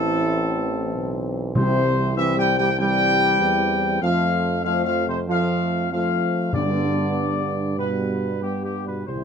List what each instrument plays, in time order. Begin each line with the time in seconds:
Already playing: tuba A1, trombone section A2, french horn section E3 C4, trumpet section A4
0.95 tuba B1
1.55 tuba C2, timpani C3, trombone section C3, french horn section E3 C4, trumpet section C5
2.16 trombone section E3, french horn section E3 C4, trumpet section E5
2.37 trombone section G3, trumpet section G5
2.58 trombone section G3, trumpet section G5
2.78 french horn section E3 C4, trombone section G3, trumpet section G5
3.41 tuba E2
4.01 tuba F2, trombone section F3, french horn section A3 C4, trumpet section F5
4.63 trombone section F3, french horn section A3 C4, trumpet section F5
4.85 trombone section F3, trumpet section F5
5.07 trombone section C3, trumpet section C5
5.27 trombone section F3, french horn section A3 C4, trumpet section F5
5.91 trombone section F3, french horn section A3 C4, trumpet section F5
6.53 timpani G2, tuba G2, trombone section D3, french horn section G3 B3, trumpet section D5
7.77 trombone section B2, french horn section G3 B3, trumpet section B4
8.41 trombone section G2, french horn section G3 B3, trumpet section G4
8.64 trombone section G2, trumpet section G4
8.86 trombone section B2, trumpet section B4
9.06 tuba C2, timpani C3, trombone section C3, french horn section G3 E4, trumpet section C5
9.16 timpani C3